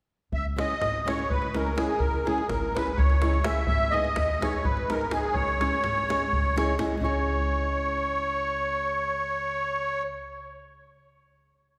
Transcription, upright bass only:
0.32 0.62 C#2 medium
0.81 1.11 G#1 medium
1.31 1.72 C#2 medium
2.00 2.29 C#2 medium
2.49 2.79 G#1 medium
2.99 3.40 C#2 medium
3.68 3.98 G#1 medium
4.17 4.46 D#2 medium
4.67 5.08 G#1 medium
5.35 5.65 C#2 medium
5.84 6.14 G#1 medium
6.33 6.74 C#2 medium
7.01 10.02 C#2 medium

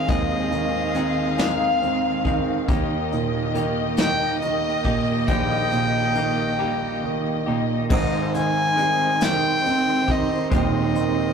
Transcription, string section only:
0.00 7.87 D#3 medium
0.00 2.65 C4 medium
0.00 2.65 G#4 medium
0.11 2.67 F5 medium
2.68 7.87 A#3 medium
2.68 7.87 G4 medium
2.68 7.86 D#5 medium
7.91 11.33 D#3 medium
7.91 11.33 C4 medium
7.91 11.33 D#4 medium
7.91 11.33 C5 medium

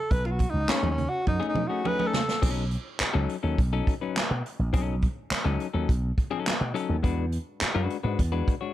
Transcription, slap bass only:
0.11 0.44 B1 loud
0.54 0.65 C#2 medium
0.83 1.05 D#2 medium
1.27 1.38 F#2 loud
1.55 1.66 B2 loud
2.43 2.75 B1 loud
3.00 muted slap bass stroke medium
3.15 3.26 C#2 medium
3.44 3.55 D#2 medium
3.58 3.80 B1 medium
4.31 4.41 B2 loud
4.59 4.70 A#1 medium
4.74 5.06 B1 loud
5.31 muted slap bass stroke soft
5.45 5.56 C#2 medium
5.74 5.85 D#2 loud
5.89 6.11 B1 loud
6.61 6.72 B2 loud
6.89 7.00 D#2 medium
7.04 7.37 E2 loud
7.62 muted slap bass stroke medium
7.75 7.87 F#2 medium
8.04 8.15 G#2 loud
8.19 8.41 E2 loud

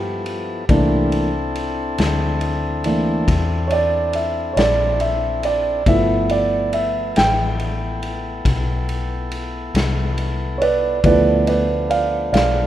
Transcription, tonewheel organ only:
0.00 0.65 F3 medium
0.00 0.65 B3 medium
0.00 0.65 E4 medium
0.00 0.66 A4 medium
0.70 5.83 C4 medium
0.70 5.84 D4 medium
0.70 5.83 E4 medium
0.70 5.83 A4 medium
5.87 11.01 B3 medium
5.87 11.00 E4 medium
5.87 11.01 A4 medium
11.03 12.67 F3 medium
11.03 12.67 A3 medium
11.03 12.67 B3 medium
11.03 12.67 D4 medium

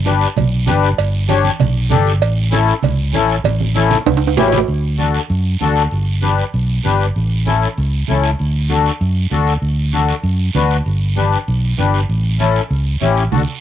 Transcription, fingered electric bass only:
0.00 0.25 G1 medium
0.37 0.70 B1 medium
0.68 0.93 G1 medium
0.98 1.48 G1 medium
1.60 1.93 B1 loud
1.91 2.22 G1 loud
2.22 2.71 A1 medium
2.83 3.14 C#2 loud
3.14 3.39 A1 loud
3.44 3.94 A1 medium
4.06 4.37 C#2 medium
4.37 4.62 A1 loud
4.68 5.18 D2 medium
5.30 5.55 F#2 medium
5.61 5.86 D2 medium
5.92 6.42 G1 medium
6.54 6.79 B1 medium
6.84 7.09 G1 medium
7.16 7.65 A1 medium
7.78 8.02 C#2 loud
8.09 8.33 C#2 medium
8.40 8.89 D2 medium
9.01 9.26 F#2 medium
9.31 9.56 D2 medium
9.62 10.11 D2 medium
10.23 10.48 F#2 medium
10.55 10.80 D2 medium
10.86 11.35 G1 medium
11.48 11.73 B1 loud
11.79 12.03 G1 medium
12.09 12.59 A1 medium
12.71 12.95 C#2 loud
13.02 13.26 A1 medium
13.33 13.44 D2 medium

